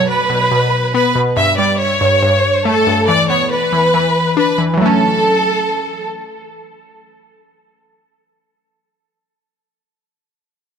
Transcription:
Already playing: B2 F#3
0.08 B4
0.30 B2
0.51 B2
0.94 B3 B4
1.15 B2
1.37 G2 E5
1.58 G3 D5
1.79 C#5
2.01 G2
2.23 G2
2.65 A3 A4
2.87 G2
3.08 E3 D5
3.30 B3 C#5
3.51 B4
3.73 E3
3.94 E3
4.37 D4 B4
4.58 E3
4.74 E3 F#3
4.80 A3 A4
4.86 C#4

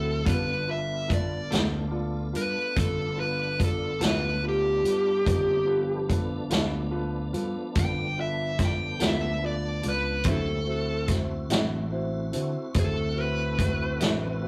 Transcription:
Already playing: D2 F#3 A3 C4 E4 F#4 A4 B4
0.25 G3 A3 B3 D4 F4 A4 B4, kick, closed hi-hat
0.29 B4
0.67 F4 A4 B4 E5
1.08 F4 A4 B4, kick, closed hi-hat
1.14 D5
1.51 D2 G3 B3 F4 A4 D5, snare, closed hi-hat
1.91 F4 A4 D5
2.33 G2 F4 A4 B4, closed hi-hat
2.75 G1 F4 A4 B4, kick, closed hi-hat
3.17 F4 A4 B4
3.59 F4 A4 D5, kick, closed hi-hat
3.64 A4
4.00 D2 G3 B3 F4 A4 B4, snare, closed hi-hat
4.05 B4
4.42 F4 A4 D5
4.48 G4
4.83 G2 F4 A4 B4, closed hi-hat
5.24 G1 F3 A#3 C4 D#4 F4 A4 D5, kick, closed hi-hat
5.66 F3 A3 B3 D4 F4 A4 B4
6.08 F4 A4 B4, kick, closed hi-hat
6.49 D2 G3 B3 F4 A4 B4, snare, closed hi-hat
6.91 F4 A4 B4
7.33 G2 F4 A4 B4, closed hi-hat
7.75 G1 F4 A4 B4, kick, closed hi-hat
7.79 G5
8.18 F4 A4 B4 E5
8.59 F4 A4 D5, kick, snare, closed hi-hat
8.65 G5
9.00 D2 G3 B3 F4 A4 B4, snare, closed hi-hat
9.05 E5
9.43 F4 A4 B4 D5
9.83 C#2 F4 A4 B4, closed hi-hat
9.89 B4
10.24 D2 D3 F#3 G3 A#3 C4 C#4 E4 F#4 C5, kick, closed hi-hat
10.31 A4
10.66 A3 C4 E4 F#4 C5
11.08 E4 F#4 C5, kick, snare, closed hi-hat
11.50 A1 D3 F#3 C4 E4 F#4 B4, snare, closed hi-hat
11.92 E4 F#4 C5
12.32 D3 E4 F#4 C5, closed hi-hat
12.74 D2 E4 F#4 C5, kick, closed hi-hat
12.80 A4
13.15 C4 E4 F#4
13.21 B4
13.59 C4 E4 F#4, kick, closed hi-hat
14.00 A1 D3 F#3 C4 E4 F#4, snare, closed hi-hat
14.41 C4 E4 F#4

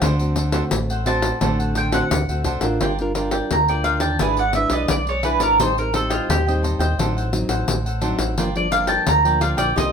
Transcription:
Already playing: A3 C4 F#4
0.02 D2 D3 D4 A4 C5 F#5, pandeiro
0.19 A3 C4 F#4, pandeiro
0.36 D4 A4 C5 F#5, pandeiro
0.52 A3 C4 D4 F#4 A4 C5 F#5, pandeiro
0.71 A1 A2, pandeiro
0.90 A4 C5 F#5, pandeiro
1.05 A3 C4 D4 F#4 A4 C5 F#5 A5, pandeiro
1.22 pandeiro
1.41 A1 D3 A3 C4 D4 F#4 A4 C5 F#5, pandeiro
1.59 A4 C5 F#5, pandeiro
1.75 D4 A4 C5 F#5 G5, pandeiro
1.92 A3 C4 D4 F#4 A4 C5 F#5, pandeiro
2.11 D2 A2, pandeiro
2.29 D2 A3 C4 F#4 A4 C5 F#5, pandeiro
2.44 C2 D4 A4 C5 F#5, pandeiro
2.61 A1 D4 F4 A4 A#4 C5 F#5, pandeiro
2.80 G1 G3 F4 A#4 D5 G5, pandeiro
2.99 D4 F4 A#4, muted cavaquinho stroke, pandeiro
3.14 D4 F4 A#4 D5 G5, pandeiro
3.31 A#4 D5 G5, pandeiro
3.51 D2 D3 A#5, pandeiro
3.68 D4 F4 A#4 D5 G5, pandeiro
3.84 F4 A#4 D5 F5 G5, pandeiro
4.00 D#2 A#4 D5 G5 A5, pandeiro
4.19 G#1 G#3 D4 E4 G#4 B4 D5 G#5, pandeiro
4.37 G#4 B4 D5 F#5, pandeiro
4.53 D4 E4 B4 E5, muted cavaquinho stroke, pandeiro
4.70 B1 G#4 B4 D5 D#5, pandeiro
4.88 B1 G#3 D5, pandeiro
5.07 G#4 B4 C#5 D5, pandeiro
5.23 D4 E4 G#4 B4 D5, pandeiro
5.40 G#1 G#4 A#4 B4 D5, pandeiro
5.59 A1 A2 G3 C4 D#4 A4 C5 D#5 G5, pandeiro
5.77 G3 C4 D#4 A#4, muted cavaquinho stroke, pandeiro
5.93 G3 C4 D#4 A4 C5 D#5 G5, pandeiro
6.10 F4 C5 D#5 G5, pandeiro
6.29 D#2 A2 G4, pandeiro
6.46 G3 C4 D#4 C5 D#5 G5, pandeiro
6.63 A4 C5 D#5 G5, pandeiro
6.79 D#2 C5 D#5 G5, pandeiro
6.98 A1 A2 F#3 C4 D4 D#4 A4 C5 F#5, pandeiro
7.17 A4 C5 F#5, pandeiro
7.33 F#3 C4 D#4, muted cavaquinho stroke, pandeiro
7.49 A1 A4 C5 F#5, pandeiro
7.68 A1 A2, pandeiro
7.86 A4 C5 F#5, pandeiro
8.01 F#3 C4 D4 D#4 A4 C5 F#5, pandeiro
8.18 A1 A4 C5 F#5, pandeiro
8.37 G1 G2 F3 A#3 D4 F4 A#4 D5 G5, pandeiro
8.55 F3 A#3 D4 D5, muted cavaquinho stroke, pandeiro
8.71 F3 A#3 D4 F4 A#4 D5 F5 G5, pandeiro
8.87 A#4 D5 G5 A5, pandeiro
9.06 D2 D3 A#5, pandeiro
9.24 F3 A#3 D4 A#4 D5 G5, pandeiro
9.41 F4 A#4 D5 F5 G5, pandeiro
9.57 A#1 A#4 D5 G5, pandeiro
9.76 C2 C3 A#3 D#4 G4 A#4 C5 D#5, pandeiro

